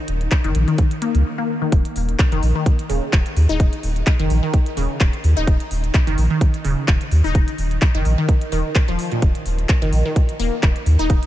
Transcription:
0.08 0.27 D#1 medium
0.08 closed hi-hat medium
0.21 closed hi-hat soft
0.32 kick loud
0.32 clap medium
0.32 closed hi-hat medium
0.44 0.53 F#1 loud
0.44 0.50 D#3 loud
0.44 closed hi-hat soft
0.55 0.65 A#1 medium
0.55 closed hi-hat medium
0.68 0.73 D#3 medium
0.68 closed hi-hat soft
0.78 kick loud
0.78 closed hi-hat medium
0.91 closed hi-hat soft
1.02 1.06 A#3 medium
1.02 closed hi-hat medium
1.15 1.23 C#2 medium
1.15 closed hi-hat soft
1.38 1.42 A#3 medium
1.62 1.67 D#3 medium
1.72 1.82 D#1 loud
1.72 kick loud
1.72 closed hi-hat medium
1.85 closed hi-hat soft
1.96 2.15 D#1 medium
1.96 open hi-hat medium
2.09 closed hi-hat soft
2.19 kick loud
2.19 clap medium
2.19 closed hi-hat medium
2.32 2.40 F#1 loud
2.32 2.37 D#3 loud
2.32 closed hi-hat soft
2.43 2.53 A#1 medium
2.43 open hi-hat medium
2.55 2.61 D#3 medium
2.66 kick loud
2.66 closed hi-hat medium
2.79 closed hi-hat soft
2.89 3.00 D#1 medium
2.89 2.92 C#3 medium
2.89 open hi-hat medium
3.13 3.23 D#1 medium
3.13 kick loud
3.13 clap loud
3.13 closed hi-hat medium
3.26 closed hi-hat soft
3.36 3.46 D#2 loud
3.36 open hi-hat medium
3.49 3.58 D#1 medium
3.49 3.55 D#4 loud
3.60 3.70 D#1 loud
3.60 kick loud
3.60 closed hi-hat medium
3.73 closed hi-hat soft
3.83 4.02 D#1 medium
3.83 open hi-hat medium
3.96 closed hi-hat soft
4.07 kick loud
4.07 clap loud
4.07 closed hi-hat medium
4.20 4.28 F#1 loud
4.20 4.25 D#3 loud
4.20 closed hi-hat soft
4.30 4.40 A#1 medium
4.30 open hi-hat medium
4.43 4.48 D#3 medium
4.54 kick loud
4.54 closed hi-hat medium
4.66 closed hi-hat soft
4.77 4.87 D#1 medium
4.77 4.80 C#3 medium
4.77 open hi-hat medium
5.00 5.11 D#1 loud
5.00 kick loud
5.00 clap loud
5.00 closed hi-hat medium
5.13 closed hi-hat soft
5.24 5.34 D#2 loud
5.24 open hi-hat medium
5.37 5.45 D#1 medium
5.37 5.42 D#4 loud
5.47 5.57 D#1 loud
5.47 kick loud
5.47 closed hi-hat medium
5.60 closed hi-hat soft
5.71 5.90 D#1 medium
5.71 open hi-hat medium
5.84 closed hi-hat soft
5.94 kick loud
5.94 clap medium
5.94 closed hi-hat medium
6.07 6.16 F#1 loud
6.07 6.12 D#3 loud
6.07 closed hi-hat soft
6.18 6.28 A#1 medium
6.18 open hi-hat medium
6.31 6.36 D#3 medium
6.41 kick loud
6.41 closed hi-hat medium
6.54 closed hi-hat soft
6.65 6.75 D#1 medium
6.65 6.67 C#3 medium
6.65 open hi-hat medium
6.88 6.98 D#1 loud
6.88 kick loud
6.88 clap loud
6.88 closed hi-hat medium
7.01 closed hi-hat soft
7.11 7.22 D#2 loud
7.11 open hi-hat medium
7.24 7.33 D#1 medium
7.24 7.30 D#4 loud
7.35 7.45 D#1 loud
7.35 kick loud
7.35 closed hi-hat medium
7.48 closed hi-hat soft
7.58 7.77 D#1 medium
7.58 open hi-hat medium
7.71 closed hi-hat soft
7.82 kick loud
7.82 clap medium
7.82 closed hi-hat medium
7.95 8.03 F#1 loud
7.95 8.00 D#3 loud
7.95 closed hi-hat soft
8.05 8.15 A#1 medium
8.05 open hi-hat medium
8.18 8.23 D#3 medium
8.29 kick loud
8.29 closed hi-hat medium
8.41 closed hi-hat soft
8.52 8.62 D#1 medium
8.52 8.58 D#3 medium
8.52 open hi-hat medium
8.75 kick loud
8.75 clap loud
8.75 closed hi-hat medium
8.88 8.97 D#1 medium
8.88 8.90 F3 medium
8.88 closed hi-hat soft
8.99 open hi-hat medium
9.12 9.17 A#2 medium
9.12 closed hi-hat soft
9.22 9.32 D#1 loud
9.22 kick loud
9.22 closed hi-hat medium
9.35 closed hi-hat soft
9.46 9.65 D#1 medium
9.46 open hi-hat medium
9.59 closed hi-hat soft
9.69 kick loud
9.69 clap medium
9.69 closed hi-hat medium
9.82 9.90 F#1 loud
9.82 9.87 D#3 loud
9.82 closed hi-hat soft
9.93 10.03 A#1 medium
9.93 open hi-hat medium
10.05 10.11 D#3 medium
10.16 kick loud
10.16 closed hi-hat medium
10.29 closed hi-hat soft
10.39 10.50 D#1 medium
10.39 10.46 A#3 medium
10.39 open hi-hat medium
10.63 10.73 D#1 loud
10.63 kick loud
10.63 clap medium
10.63 closed hi-hat medium
10.76 closed hi-hat soft
10.86 10.96 D#2 loud
10.86 open hi-hat medium
10.99 11.07 D#1 medium
10.99 11.05 D#4 loud
11.10 11.20 D#1 loud
11.10 kick loud
11.10 closed hi-hat medium
11.23 closed hi-hat soft

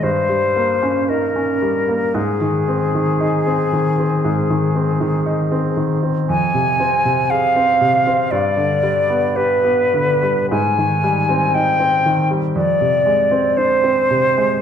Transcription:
0.03 2.11 G2 soft
0.03 1.10 C5 medium
0.29 0.72 G3 soft
0.56 0.99 A#3 soft
0.83 1.25 C#4 soft
1.09 1.52 D#4 soft
1.09 2.16 A#4 soft
1.36 1.78 C#4 soft
1.62 2.05 G3 soft
1.88 2.15 A#3 soft
2.14 4.20 G#2 soft
2.14 6.02 G#4 medium
2.41 2.84 D#3 soft
2.68 3.10 C4 soft
2.95 3.36 D#3 soft
3.20 3.62 D#4 soft
3.46 3.88 C4 soft
3.73 4.14 D#3 soft
3.98 4.40 C4 soft
4.24 6.25 G#2 soft
4.50 4.91 D#3 soft
4.75 5.16 C4 soft
5.00 5.41 D#3 soft
5.26 5.67 D#4 soft
5.52 5.93 C4 soft
5.77 6.18 D#3 soft
6.03 6.29 C4 soft
6.29 8.28 F2 soft
6.29 7.32 G#5 medium
6.54 6.95 C3 soft
6.80 7.20 C4 soft
7.05 7.46 C3 soft
7.30 7.71 G#4 soft
7.30 8.33 F5 medium
7.56 7.96 C4 soft
7.81 8.21 C3 soft
8.07 8.32 C4 soft
8.31 10.47 G2 soft
8.31 9.38 D5 medium
8.57 8.99 D3 soft
8.83 9.26 G3 soft
9.10 9.53 B3 soft
9.36 9.81 G4 soft
9.36 10.50 B4 medium
9.65 10.11 B3 soft
9.94 10.40 D3 soft
10.23 10.51 G3 soft
10.50 12.52 G#2 soft
10.50 11.56 G#5 medium
10.78 11.20 D#3 soft
11.04 11.45 G3 soft
11.29 11.70 C4 soft
11.54 11.95 D#4 soft
11.54 12.30 G5 medium
11.80 12.20 C4 soft
12.06 12.46 D#3 soft
12.31 12.56 G3 soft
12.55 14.59 F2 soft
12.55 13.59 D5 medium
12.81 13.21 C3 soft
13.06 13.47 G#3 soft
13.31 13.73 C4 soft
13.57 14.00 D4 soft
13.57 14.62 C5 medium
13.84 14.26 C4 soft
14.11 14.53 C3 soft
14.38 14.62 G#3 soft

